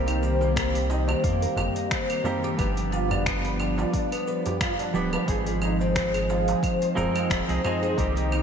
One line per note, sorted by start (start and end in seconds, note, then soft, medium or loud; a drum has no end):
0.00 1.15 C2 loud
0.00 2.20 D#3 medium
0.00 2.59 D#3 medium
0.00 2.21 G3 medium
0.00 2.21 A#3 medium
0.00 2.59 A#3 medium
0.00 2.22 C4 medium
0.00 2.59 C4 medium
0.00 2.22 G4 medium
0.00 5.28 G4 medium
0.00 2.59 C5 medium
0.07 0.22 D#4 medium
0.07 open hi-hat soft
0.07 claves medium
0.23 0.40 C4 medium
0.23 darbuka ka medium
0.23 shaker medium
0.41 0.55 A#3 medium
0.41 darbuka tek soft
0.41 shaker soft
0.56 0.74 A#4 medium
0.56 finger snap loud
0.56 kick loud
0.56 open hi-hat medium
0.56 claves medium
0.56 shaker soft
0.74 0.88 G4 medium
0.74 open hi-hat soft
0.74 darbuka ka medium
0.90 1.07 D#4 loud
0.90 darbuka tek medium
0.90 shaker medium
1.08 1.22 C4 medium
1.08 darbuka ka medium
1.08 darbuka tek medium
1.08 claves medium
1.08 shaker soft
1.24 1.47 F2 medium
1.24 1.41 A#3 loud
1.24 kick loud
1.24 open hi-hat medium
1.24 shaker soft
1.42 1.57 A#4 medium
1.42 open hi-hat soft
1.56 1.69 G1 medium
1.56 1.75 G4 medium
1.56 darbuka tek medium
1.56 darbuka dum medium
1.56 claves medium
1.56 shaker medium
1.76 1.91 D#4 medium
1.76 open hi-hat soft
1.76 shaker soft
1.91 2.09 C4 medium
1.91 finger snap loud
1.91 kick loud
1.91 open hi-hat medium
2.10 2.24 A#3 medium
2.10 open hi-hat soft
2.10 claves medium
2.24 2.55 D#3 medium
2.24 2.55 G3 medium
2.24 2.55 A#3 medium
2.24 2.56 C4 medium
2.24 2.56 G4 medium
2.24 2.42 A#4 loud
2.24 darbuka tek medium
2.24 darbuka dum medium
2.24 shaker medium
2.44 2.58 G4 loud
2.44 shaker soft
2.57 3.85 G1 loud
2.57 4.90 F3 medium
2.57 7.98 F3 medium
2.57 4.91 G3 medium
2.57 4.91 B3 medium
2.57 4.92 D4 medium
2.57 4.92 G4 medium
2.57 2.69 B4 medium
2.57 kick loud
2.57 open hi-hat medium
2.57 claves medium
2.57 shaker soft
2.73 5.28 B3 medium
2.77 2.92 G4 medium
2.77 open hi-hat soft
2.91 3.10 F4 loud
2.91 darbuka ka soft
2.91 shaker medium
2.97 5.28 D4 medium
3.11 3.25 D4 medium
3.11 darbuka tek soft
3.11 darbuka dum medium
3.11 claves medium
3.11 shaker soft
3.26 3.44 B3 medium
3.26 finger snap loud
3.26 kick loud
3.26 open hi-hat medium
3.26 shaker soft
3.37 5.29 D5 medium
3.44 3.58 B4 medium
3.44 open hi-hat soft
3.44 darbuka ka medium
3.60 3.78 G4 medium
3.60 darbuka tek medium
3.60 claves medium
3.60 shaker medium
3.78 3.92 F4 medium
3.78 darbuka ka medium
3.78 darbuka tek medium
3.78 shaker soft
3.93 4.11 D4 medium
3.93 kick loud
3.93 open hi-hat medium
3.93 shaker soft
4.12 4.27 B3 medium
4.12 open hi-hat soft
4.12 claves medium
4.28 4.45 B4 medium
4.28 shaker medium
4.46 4.59 G4 medium
4.46 open hi-hat soft
4.46 darbuka ka soft
4.46 darbuka dum medium
4.46 shaker medium
4.61 4.72 F4 loud
4.61 finger snap loud
4.61 kick loud
4.61 open hi-hat medium
4.61 claves medium
4.61 shaker soft
4.79 4.93 D4 medium
4.79 open hi-hat soft
4.79 darbuka tek medium
4.94 5.17 D1 medium
4.94 5.24 F3 medium
4.94 5.25 G3 medium
4.94 5.25 B3 medium
4.94 5.13 B3 loud
4.94 5.25 D4 medium
4.94 5.25 G4 medium
4.94 shaker medium
5.13 5.27 B4 medium
5.13 darbuka ka medium
5.13 darbuka tek soft
5.13 claves medium
5.13 shaker soft
5.26 6.54 G#1 loud
5.26 6.93 F3 medium
5.26 6.93 G#3 medium
5.26 6.94 C4 medium
5.26 6.94 D#4 medium
5.26 5.46 G#4 medium
5.26 kick loud
5.26 open hi-hat medium
5.26 shaker soft
5.30 6.95 G#4 medium
5.47 5.62 F4 medium
5.47 open hi-hat soft
5.55 8.43 C4 medium
5.62 5.80 D#4 medium
5.62 darbuka ka medium
5.62 claves medium
5.62 shaker medium
5.67 7.98 G#4 medium
5.75 8.43 D#4 medium
5.79 5.95 C4 medium
5.79 darbuka tek soft
5.79 shaker soft
5.96 6.14 C5 medium
5.96 finger snap medium
5.96 kick loud
5.96 open hi-hat medium
5.96 shaker soft
6.08 8.43 D#5 medium
6.14 6.28 G#4 medium
6.14 open hi-hat soft
6.14 darbuka ka soft
6.14 claves medium
6.30 6.47 F4 loud
6.30 darbuka tek medium
6.30 shaker medium
6.48 6.62 D#4 medium
6.48 open hi-hat soft
6.48 darbuka ka medium
6.48 darbuka tek medium
6.48 shaker soft
6.63 6.81 C4 medium
6.63 kick loud
6.63 open hi-hat medium
6.63 claves medium
6.63 shaker soft
6.82 6.96 C5 medium
6.82 open hi-hat soft
6.95 7.09 D#1 medium
6.95 7.44 F3 medium
6.95 7.44 G#3 medium
6.95 7.44 C4 medium
6.95 7.44 D#4 medium
6.95 7.14 G#4 medium
6.95 7.45 A#4 loud
6.95 darbuka tek medium
6.95 darbuka dum medium
6.95 shaker medium
7.15 7.30 F4 medium
7.15 open hi-hat soft
7.15 claves medium
7.15 shaker soft
7.30 7.42 D#1 medium
7.30 7.48 D#4 medium
7.30 finger snap loud
7.30 kick loud
7.30 open hi-hat medium
7.30 shaker soft
7.48 7.59 C2 loud
7.48 7.60 F3 medium
7.48 7.60 G#3 medium
7.48 7.61 C4 medium
7.48 7.63 C4 medium
7.48 7.61 D#4 medium
7.48 7.61 G#4 loud
7.48 open hi-hat soft
7.64 7.94 F3 medium
7.64 7.94 G#3 medium
7.64 7.95 C4 medium
7.64 7.95 D#4 medium
7.64 7.95 G#4 loud
7.64 7.81 C5 loud
7.64 darbuka tek medium
7.64 darbuka dum medium
7.64 claves medium
7.64 shaker medium
7.83 7.97 G#4 loud
7.83 shaker soft
7.96 8.43 C2 loud
7.96 8.43 D#3 medium
7.96 8.43 G3 medium
7.96 8.43 A#3 medium
7.96 8.43 C4 medium
7.96 8.09 A#4 medium
7.96 kick loud
7.96 open hi-hat medium
7.96 shaker soft
8.00 8.43 G4 medium
8.16 8.31 G4 medium
8.16 open hi-hat soft
8.28 8.43 D#4 loud
8.28 8.43 A#4 medium
8.28 darbuka ka medium
8.28 claves medium
8.32 shaker medium